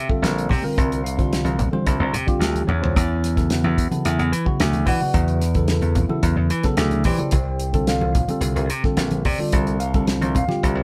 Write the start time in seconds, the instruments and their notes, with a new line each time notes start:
Already playing: tine electric piano E5
0.09 tine electric piano D3 G3 C4 F4 A4, kick
0.22 slap bass A#1, tine electric piano D5, snare, closed hi-hat
0.38 closed hi-hat
0.49 slap bass C3, kick, snare, open hi-hat, low conga
0.62 tine electric piano D3 G3 C4 F4 A#4, muted slap bass stroke
0.78 slap bass C2, tine electric piano C5, kick, closed hi-hat
0.92 closed hi-hat
1.04 tine electric piano F5, closed hi-hat
1.17 tine electric piano D3 G3 C4 F4 C5, kick, closed hi-hat
1.33 snare, closed hi-hat
1.44 slap bass C2, closed hi-hat, high conga
1.59 kick, closed hi-hat, low conga
1.71 tine electric piano D3 G3 C4 F4 C5, high conga
1.86 slap bass C2, kick, closed hi-hat
2.00 slap bass C2
2.13 slap bass C3, closed hi-hat, low conga
2.27 tine electric piano D3 G3 C4 F4 G4, muted slap bass stroke, kick, closed hi-hat
2.40 slap bass D2, snare, closed hi-hat
2.55 closed hi-hat, high conga
2.67 slap bass E2, tine electric piano C#4 C#5, high tom, high conga, low conga
2.80 tine electric piano D3 G3 C4 F4 C5, floor tom
2.96 slap bass E2, kick, closed hi-hat
3.24 snare, closed hi-hat
3.35 tine electric piano C#3 F#3 B3 E4 A4, kick, snare, closed hi-hat
3.50 tine electric piano B3 E4 F#4 B4, snare, closed hi-hat
3.64 slap bass E2, high conga
3.78 kick, closed hi-hat
3.90 tine electric piano C#3 F#3 B3 E4 A4, muted slap bass stroke, closed hi-hat, high conga
4.05 slap bass E2, closed hi-hat
4.19 slap bass E2, closed hi-hat
4.32 slap bass E3, closed hi-hat
4.45 tine electric piano C#3 F#3 B3 E4 F#4, muted slap bass stroke, kick
4.60 slap bass D2, snare, closed hi-hat
4.73 closed hi-hat, high conga
4.86 slap bass E3, tine electric piano F#4 B4 D5 F#5, kick, snare, open hi-hat, low conga
5.00 tine electric piano C#3 F#3 B3 E4 F#4, muted slap bass stroke
5.14 slap bass E2, kick, closed hi-hat
5.28 closed hi-hat
5.42 snare, closed hi-hat
5.55 tine electric piano C#3 F#3 B3 E4 A4, kick, closed hi-hat
5.68 tine electric piano E4 E5, snare, closed hi-hat
5.72 tine electric piano A4 B4
5.81 slap bass E2, closed hi-hat, high conga
5.95 kick, closed hi-hat, low conga
6.08 tine electric piano C#3 F#3 B3 E4 A4, muted slap bass stroke, high conga
6.23 slap bass E2, kick, closed hi-hat
6.36 slap bass E2
6.50 slap bass E3, closed hi-hat
6.63 tine electric piano C#3 F#3 B3 E4 A4, muted slap bass stroke, kick, snare, closed hi-hat
6.77 slap bass D2, snare, closed hi-hat
6.91 closed hi-hat, high conga
7.04 slap bass E3, tine electric piano G4 C5 D5 G5, kick, open hi-hat, low conga
7.17 tine electric piano C#3 F#3 B3 E4 A4, muted slap bass stroke, closed hi-hat
7.31 slap bass C2, kick, closed hi-hat
7.60 closed hi-hat
7.73 tine electric piano D3 G3 C4 F4 A4, kick, closed hi-hat
7.87 tine electric piano F4 C5 D5 F5, snare, closed hi-hat
8.01 slap bass C2, high conga
8.15 kick, closed hi-hat, low conga
8.28 tine electric piano D3 G3 C4 F4 A4, muted slap bass stroke, closed hi-hat, high conga
8.41 slap bass C2, closed hi-hat
8.56 slap bass C2, closed hi-hat
8.69 slap bass C3, closed hi-hat
8.83 tine electric piano D3 G3 C4 F4 A4, muted slap bass stroke, kick, snare
8.97 slap bass A#1, tine electric piano E5, snare, closed hi-hat
9.11 closed hi-hat, high conga
9.25 slap bass C3, tine electric piano D5, kick, open hi-hat, low conga
9.38 tine electric piano D3 G3 C4 F4 A4, muted slap bass stroke
9.52 slap bass C2, kick, closed hi-hat
9.67 closed hi-hat
9.80 tine electric piano F5, closed hi-hat
9.94 tine electric piano D3 G3 C4 F4 A4, kick, closed hi-hat
10.07 snare, closed hi-hat
10.21 slap bass C2, closed hi-hat, high conga
10.35 tine electric piano F5, kick, closed hi-hat, low conga
10.47 tine electric piano D3 G3 C4 F4 G4, snare, high conga
10.63 slap bass C2, kick, closed hi-hat
10.75 slap bass C2